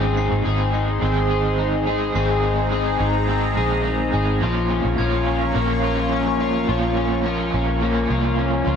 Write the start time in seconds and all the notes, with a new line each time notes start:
Already playing: G#1 G#2 D#3 G#3 C4 D#4 G#4 C5 D#5 C6
0.17 D#4 C7
0.32 G#1
0.44 G#1 G#3 C4 D#4
0.49 G#4
0.74 D#4
1.01 G#1 G#2 D#3 G#3 C4 D#4 G#4
1.30 G#4
1.59 D#4
1.86 D#4 G#4
1.90 G#3 C4
2.14 G#1 G#2 D#3 G#3 C4 D#4 A#5 C7
2.18 G#4
2.43 D#4
2.71 G#3 C4 D#4 G#4
2.76 G#4
3.00 G#1 D#4
3.28 G#2 D#3 G#3 C4 D#4 G#4
3.57 A#1 G#4
3.85 D#4
4.11 G#1 D#4 G#4
4.16 G#3 C4
4.41 A#1 A#2 F3 A#3 C#4 A#4 C#5 F5 C#6
4.45 F4
4.70 C#4
4.84 A#1
4.97 A#1 F3 A#3 G#6
5.01 C#4 F4
5.27 C#4
5.53 A#1 A#2 F3
5.57 A#3 C#4 F4
5.84 F4
6.12 C#4
6.40 F4
6.67 A#1 A#2 F3 A#3 C#4
6.71 F4
6.97 C#4
7.23 F3 A#3 C#4
7.29 F4
7.54 A#1 C#4
7.80 A#2 F3 A#3 C#4 F4
8.10 C2 F4
8.38 C#4
8.65 C#2 C#4 F4
8.70 A#3